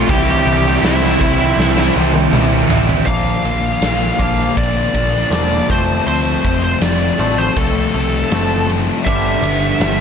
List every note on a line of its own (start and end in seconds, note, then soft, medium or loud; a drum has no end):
0.09 0.39 C2 loud
0.09 0.82 C3 medium
0.09 0.82 E3 loud
0.09 0.67 G3 medium
0.09 0.66 C4 loud
0.09 0.64 E4 loud
0.09 0.80 G4 medium
0.09 0.87 G5 medium
0.09 kick loud
0.09 crash loud
0.46 0.76 C2 loud
0.46 0.84 E3 medium
0.46 0.68 G3 medium
0.46 0.67 C4 medium
0.46 crash medium
0.50 0.65 E4 medium
0.66 0.83 G3 medium
0.66 0.83 C4 medium
0.66 0.84 E4 medium
0.83 1.13 C2 medium
0.83 1.40 C3 loud
0.83 1.19 E3 medium
0.83 1.02 G3 medium
0.83 1.02 C4 loud
0.83 1.93 E4 medium
0.83 1.00 E4 loud
0.83 1.93 E5 medium
0.83 snare loud
0.83 crash medium
1.02 1.21 G3 medium
1.02 1.21 C4 medium
1.02 1.22 E4 medium
1.02 snare soft
1.21 1.51 C2 medium
1.21 1.40 E3 medium
1.21 1.39 G3 medium
1.21 1.39 C4 medium
1.21 1.38 E4 medium
1.21 kick medium
1.21 crash medium
1.39 1.96 G3 medium
1.39 1.97 C4 medium
1.39 1.97 E4 medium
1.39 muted distorted electric guitar stroke medium
1.58 1.88 C2 medium
1.58 snare medium
1.76 1.94 G3 medium
1.76 1.95 C4 medium
1.76 1.95 E4 medium
1.76 snare medium
1.95 2.26 C2 medium
1.95 2.13 E3 medium
1.95 2.13 G3 medium
1.95 2.12 C4 medium
1.95 2.12 E4 medium
2.13 2.33 G3 medium
2.13 2.34 C4 medium
2.13 2.34 E4 medium
2.13 muted distorted electric guitar stroke medium
2.13 high tom medium
2.32 2.62 C2 medium
2.32 3.05 C3 loud
2.32 2.68 E3 medium
2.32 2.69 G3 loud
2.32 2.69 C4 loud
2.32 2.70 E4 loud
2.32 mid tom medium
2.49 2.68 G3 medium
2.49 2.69 C4 medium
2.49 2.70 E4 medium
2.69 3.00 A1 medium
2.69 3.06 C3 medium
2.69 3.05 E3 medium
2.69 3.05 G3 medium
2.69 3.06 C4 medium
2.69 3.06 E4 medium
2.69 floor tom loud
2.88 3.06 G3 medium
2.88 3.05 C4 medium
2.88 3.05 E4 medium
2.88 floor tom medium
3.06 3.35 A#1 medium
3.06 3.42 A#2 medium
3.06 3.43 F3 medium
3.06 3.43 A#3 medium
3.06 3.43 D4 medium
3.06 4.57 F5 medium
3.06 kick medium
3.06 ride medium
3.43 3.72 A#1 medium
3.43 3.80 A#2 medium
3.43 3.81 F3 medium
3.43 3.81 A#3 medium
3.43 3.81 D4 medium
3.43 ride medium
3.82 4.10 A#1 medium
3.82 4.18 A#2 medium
3.82 4.19 F3 medium
3.82 4.19 A#3 medium
3.82 4.19 D4 medium
3.82 snare loud
3.82 ride medium
4.19 4.48 A#1 medium
4.19 4.54 A#2 medium
4.19 4.56 F3 medium
4.19 4.56 A#3 medium
4.19 4.56 D4 medium
4.19 kick medium
4.19 ride medium
4.40 snare soft
4.56 4.85 A#1 medium
4.56 4.94 A#2 medium
4.56 4.94 F3 loud
4.56 4.95 A#3 medium
4.56 4.95 D4 medium
4.56 5.66 D5 medium
4.56 kick loud
4.56 ride medium
4.94 5.22 A#1 medium
4.94 5.30 A#2 medium
4.94 5.31 F3 medium
4.94 5.31 A#3 medium
4.94 5.32 D4 medium
4.94 kick medium
4.94 ride medium
5.31 5.60 E1 medium
5.31 5.67 A#2 medium
5.31 5.67 F3 medium
5.31 5.68 A#3 medium
5.31 5.68 D4 medium
5.31 snare loud
5.31 ride medium
5.69 5.98 F1 medium
5.69 6.05 F2 medium
5.69 6.06 C3 medium
5.69 6.07 F3 medium
5.69 6.06 A3 medium
5.69 6.07 C4 loud
5.69 6.06 C5 medium
5.69 kick medium
5.69 ride medium
6.07 6.35 D2 medium
6.07 6.43 F2 medium
6.07 6.43 C3 medium
6.07 6.44 F3 loud
6.07 6.43 A3 loud
6.07 6.44 C4 loud
6.07 6.63 C5 medium
6.07 ride medium
6.44 6.73 F1 medium
6.44 6.79 F2 medium
6.44 6.80 C3 medium
6.44 6.80 F3 medium
6.44 6.80 A3 medium
6.44 6.81 C4 medium
6.44 kick medium
6.44 ride medium
6.64 6.83 C5 medium
6.80 7.10 F1 medium
6.80 7.16 F2 medium
6.80 7.17 C3 medium
6.80 7.17 F3 medium
6.80 7.18 A3 medium
6.80 7.18 C4 medium
6.80 7.40 D5 medium
6.80 snare medium
6.80 ride medium
7.17 7.47 A1 medium
7.17 7.55 F2 medium
7.17 7.55 C3 medium
7.17 7.56 F3 medium
7.17 7.56 A3 medium
7.17 7.56 C4 medium
7.17 ride medium
7.38 7.57 C5 medium
7.56 7.84 C2 medium
7.56 7.92 F2 loud
7.56 7.93 C3 medium
7.56 7.93 F3 loud
7.56 7.94 A3 loud
7.56 7.94 C4 loud
7.56 8.69 A4 medium
7.56 kick loud
7.56 ride medium
7.94 8.22 C2 medium
7.94 8.28 F2 medium
7.94 8.29 C3 medium
7.94 8.29 F3 medium
7.94 8.29 A3 medium
7.94 8.30 C4 medium
7.94 ride medium
8.29 8.88 F#1 medium
8.29 8.66 F2 medium
8.29 8.67 C3 medium
8.29 8.67 F3 medium
8.29 8.68 A3 medium
8.29 8.68 C4 medium
8.29 snare loud
8.29 ride medium
8.67 9.03 F2 medium
8.67 9.04 C3 medium
8.67 9.04 F3 medium
8.67 9.04 A3 medium
8.67 9.04 C4 loud
8.67 ride medium
9.05 9.34 G1 medium
9.05 9.41 G2 medium
9.05 9.41 D3 medium
9.05 9.43 G3 medium
9.05 9.42 B3 medium
9.05 9.43 D4 loud
9.05 10.01 E5 loud
9.05 kick loud
9.05 ride medium
9.43 9.71 G1 loud
9.43 9.79 G2 medium
9.43 9.79 D3 medium
9.43 9.80 G3 medium
9.43 9.80 B3 medium
9.43 9.81 D4 medium
9.43 ride medium
9.80 10.01 G1 medium
9.80 10.01 G2 medium
9.80 10.01 D3 medium
9.80 10.01 G3 medium
9.80 10.01 B3 medium
9.80 10.01 D4 medium
9.80 snare loud
9.80 ride medium